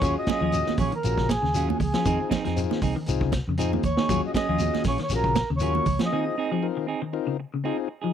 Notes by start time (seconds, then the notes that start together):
Already playing: C#5
0.01 D#2 F#3 C#4 F4 F#4 G#4, muted clean electric guitar stroke, kick, closed hi-hat, shekere
0.18 D#5, muted clean electric guitar stroke
0.26 F#3 C#4 F4 G#4 D#5, muted fingered electric bass stroke, kick, snare, closed hi-hat, high conga, shekere
0.41 D#2 F3 F#3 C#4 F4 G#4
0.52 C#4 F4 F#4 G#4, closed hi-hat, shekere
0.66 D#3, muted clean electric guitar stroke, snare, high conga
0.77 A#1 F#3 C#4 F4 G#4 C#5, kick, open hi-hat, low conga, shekere
0.92 D#3, muted clean electric guitar stroke, closed hi-hat
0.96 A#4
1.03 A#1 C#4 F4 F#4 G#4, muted clean electric guitar stroke, closed hi-hat, shekere
1.17 C#3, muted clean electric guitar stroke, kick, snare
1.29 G#4, muted clean electric guitar stroke, kick, snare, closed hi-hat, high conga, shekere
1.42 D#2 C#3, snare
1.54 F#3 C#4 F4 F#4 G#4, closed hi-hat, shekere
1.69 D#3, muted clean electric guitar stroke, high conga
1.80 C#2 G#4, muted clean electric guitar stroke, kick, open hi-hat, low conga, shekere
1.94 F3 C#4 F4 G#4, snare, closed hi-hat
2.05 F2 D#3 C4 D#4 F4 G#4, kick, closed hi-hat, low conga, shekere
2.20 muted clean electric guitar stroke
2.30 C4 D#4 G#4, kick, snare, closed hi-hat, high conga, low conga, shekere
2.45 F2 F3 C4 D#4 G#4, snare, closed hi-hat
2.56 C4 D#4 F4 G#4, closed hi-hat, shekere
2.70 D#3, muted clean electric guitar stroke, snare, high conga
2.81 C2 C4 D#4 G#4, kick, open hi-hat, low conga, shekere
2.96 D#3, muted clean electric guitar stroke
3.06 C2 C4 D#4 F4 G#4, muted clean electric guitar stroke, closed hi-hat, shekere
3.21 C#3, muted clean electric guitar stroke, kick
3.32 muted clean electric guitar stroke, kick, snare, closed hi-hat, high conga, shekere
3.48 F2 C#3
3.57 C4 D#4 F4 G#4, closed hi-hat, shekere
3.72 D#3, muted clean electric guitar stroke, high conga
3.83 D#2 C#5, muted clean electric guitar stroke, kick, closed hi-hat, low conga, shekere
3.97 D#3 D#4 G#4, snare, high conga
4.09 D#2 F#3 C#4 F4 F#4 G#4, muted clean electric guitar stroke, kick, closed hi-hat, shekere
4.22 muted clean electric guitar stroke
4.26 D#5
4.34 F#3 C#4 G#4 D#5, muted fingered electric bass stroke, kick, snare, closed hi-hat, high conga, shekere
4.49 D#2 F3 F#3 C#4 F4 G#4
4.59 C#4 F4 F#4 G#4, closed hi-hat, high conga, shekere
4.73 D#3, muted clean electric guitar stroke, snare, high conga
4.84 A#1 F#3 C#4 F4 G#4, kick, snare, open hi-hat, low conga, shekere
4.89 C#5
4.98 D#3, muted clean electric guitar stroke, snare, closed hi-hat
5.03 C#5
5.09 A#1 C#4 F4 F#4 G#4, muted clean electric guitar stroke, snare, closed hi-hat, shekere
5.15 A#4
5.24 C#3, muted clean electric guitar stroke, kick
5.35 muted clean electric guitar stroke, kick, snare, closed hi-hat, high conga, shekere
5.50 D#2 C#3
5.57 F#3 F4 C#5, closed hi-hat, shekere
5.61 C#4 F4 F#4 G#4 A#4
5.74 D#3, muted clean electric guitar stroke, high conga
5.85 C#2, muted clean electric guitar stroke, kick, open hi-hat, low conga, shekere
5.99 F3 C#4 F4 G#4, snare, closed hi-hat, high conga
6.06 D#5
6.12 D#3 C4 D#4 F4 G#4
6.25 muted clean electric guitar stroke
6.38 C4 D#4 G#4
6.52 F3 C4 D#4 G#4
6.62 C4 D#4 F4 A#4
6.77 D#3, muted clean electric guitar stroke
6.87 C4 D#4 G#4
7.02 D#3
7.13 C4 D#4 F4 A#4, muted clean electric guitar stroke
7.27 C#3, muted clean electric guitar stroke
7.39 muted clean electric guitar stroke
7.54 C#3
7.64 C4 D#4 F4 G#4
7.78 muted clean electric guitar stroke
7.88 muted clean electric guitar stroke
8.02 F3 D#4 G#4